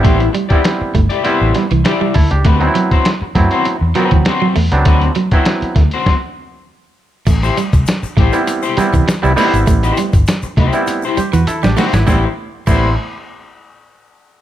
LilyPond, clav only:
\new Staff \with { instrumentName = "Clav" } { \time 4/4 \key a \dorian \tempo 4 = 100 << { r2. <g' c''>8 <e' a'>16 <d' g'>16~ | <d' g'>16 r2. r8. | r1 | r1 |
r2 r8 <g' c''>16 <fis' b'>16 <e' a'>16 <d' g'>16 <c' fis'>16 <b e'>16~ | <b e'>16 r2. r8. | } \\ { <g b c' e'>8 r16 <g b c' e'>8. r8 <g b c' e'>8. r4 r16 | r16 <fis b c' dis' e'>8. r8 <fis b c' e'>8. r16 <fis b c' fis'>8. r8 <fis b c' d'>16~ | <fis b c' d'>8 r16 <fis b c' e'>8. r2 r8 | r4. r16 <g b c' e'>8 r16 <g b c' e'>8 r16 <g b c' e'>16 <g b c' e'>8~ |
<g b c' e'>8. r4 <g b c' e'>8 r4. r16 | <g b c' e'>16 r8. <g b c' e'>8 r2 r8 | } >> }